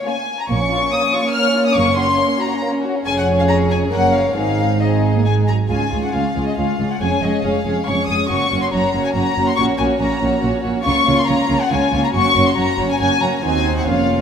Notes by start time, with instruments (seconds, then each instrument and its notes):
0.06 viola section A#3 C#4, violin section F4 C#5 G#5
0.40 violin section A#5
0.49 double bass section A#1, cello section A#2, violin section A#3 C#5 C#6, viola section A#3 C#4
0.58 violin section C#4
0.70 violin section F4
0.81 violin section C#4
0.91 violin section A#3 D#6
1.03 violin section C#4
1.13 violin section F4 C#6
1.23 violin section C#4
1.33 violin section A#3 F6
1.45 violin section C#4
1.55 violin section F4
1.64 violin section C#4 D#6
1.76 double bass section F#1, cello section F#2, violin section A#3 C#6
1.88 violin section C#4
1.96 violin section F#4 C6
2.07 violin section C#4
2.18 violin section A#3
2.29 violin section C#4
2.40 violin section F#4 A#5
2.49 violin section C#4
2.60 violin section A#3
2.70 violin section C#4
2.82 violin section F#4
2.94 violin section C#4
3.04 double bass section F1, cello section F2, viola section C#4, violin section G#4 C#5 G#5
3.18 violin section F#5
3.39 violin section F5
3.48 violin section A#5
3.71 violin section G#5
3.90 double bass section F#1, cello section F#2, viola section A#3 C#4, violin section A#4 C#5 F#5
4.13 violin section F5
4.35 double bass section G#1, cello section G#2, viola section G#3 C4, violin section D#4 G#4 F5
4.81 viola section C4, violin section D#4 G#4 D#5
5.16 viola section A#3
5.25 viola section G#3, violin section G#5
5.48 viola section F#3, violin section A#5
5.69 double bass section C#2, cello section C#2, viola section G#3 C#4, violin section F4 G#4 G#5
5.92 cello section C#2, double bass section C#2, viola section G#3 C#4, violin section F4 G#4
6.04 violin section F#5
6.13 double bass section C#2, cello section C#2, viola section G#3 C#4, violin section F4 G#4 F5
6.35 double bass section C#2, cello section C#2, viola section G#3 C#4, violin section F4 G#4
6.47 violin section D#5
6.57 cello section C#2, double bass section C#2, viola section G#3 C#4, violin section F4 G#4 F5
6.79 double bass section C#2, cello section C#2, viola section G#3 C#4, violin section F4 G#4
6.91 violin section F#5
7.01 double bass section F1, cello section F2, viola section G#3 C#4, violin section G#4 C#5 G#5
7.22 double bass section F1, cello section F2, viola section G#3 C#4, violin section G#4 C#5 D#5
7.44 double bass section F1, cello section F2, viola section G#3 C#4, violin section G#4 C#5 F5
7.65 double bass section F1, cello section F2, viola section G#3 C#4, violin section G#4 C#5
7.86 double bass section F1, cello section F2, viola section G#3 C#4, violin section G#4 C#5 C#6
8.07 double bass section F1, cello section F2, viola section G#3 C#4, violin section G#4 C#5 D#6
8.30 double bass section F#1, cello section F#2, viola section A#3 C#4, violin section F#4 C#5 C#6
8.51 double bass section F#1, cello section F#2, viola section A#3 C#4, violin section F#4 C#5
8.63 violin section C6
8.73 double bass section F#1, cello section F#2, viola section A#3 C#4, violin section F#4 C#5 A#5
8.94 double bass section F#1, cello section F#2, viola section A#3 C#4, violin section F#4 C#5
9.04 violin section G#5
9.14 double bass section F#1, cello section F#2, viola section A#3 C#4, violin section F#4 C#5 A#5
9.37 double bass section F#1, cello section F#2, viola section A#3 C#4, violin section F#4 C#5
9.48 violin section C6
9.56 double bass section A#1, cello section A#2, viola section A#3 C#4, violin section F#4 C#5 C#6
9.78 double bass section A#1, cello section A#2, viola section A#3 C#4, violin section F#4 C#5 G#5
9.99 double bass section A#1, cello section A#2, viola section A#3 C#4, violin section F#4 C#5 A#5
10.22 double bass section A#1, cello section A#2, viola section A#3 C#4, violin section F#4 C#5
10.41 double bass section A#1, cello section A#2, viola section A#3 C#4, violin section F#4 C#5
10.63 double bass section A#1, cello section A#2, viola section A#3 C#4, violin section F#4 C#5
10.84 double bass section C#2, cello section C#3, viola section A#3 C#4, violin section F4 C#5 C#6
11.06 double bass section C#2, cello section C#3, viola section A#3 C#4, violin section F4 C#5
11.18 violin section C6
11.27 double bass section C#2, cello section C#3, viola section A#3 C#4, violin section F4 C#5 A#5
11.48 double bass section C#2, cello section C#3, viola section A#3 C#4, violin section F4 C#5
11.61 violin section F#5
11.69 double bass section C#2, cello section C#3, viola section A#3 C#4, violin section F4 C#5 G#5
11.91 double bass section C#2, cello section C#3, viola section A#3 C#4, violin section F4 C#5
12.04 violin section A#5
12.13 double bass section F#1, cello section F#2, viola section A#3 C#4, violin section F#4 C#5 C#6
12.35 double bass section F#1, cello section F#2, viola section A#3 C#4, violin section F#4 C#5
12.48 violin section C6
12.56 double bass section F#1, cello section F#2, viola section A#3 C#4, violin section F#4 C#5 A#5
12.79 double bass section F#1, cello section F#2, viola section A#3 C#4, violin section F#4 C#5
12.90 violin section G#5
13.00 double bass section F#1, cello section F#2, viola section A#3 C#4, violin section F#4 C#5 G#5
13.20 double bass section F#1, cello section F#2, viola section A#3 C#4, violin section F#4 C#5 A#5
13.43 double bass section D#2, cello section D#2, viola section C4 D#4, violin section F#4 C5 G#5
13.78 violin section F#5
13.87 double bass section F1, cello section F2, viola section A#3 C#4, violin section F4 C#5 F5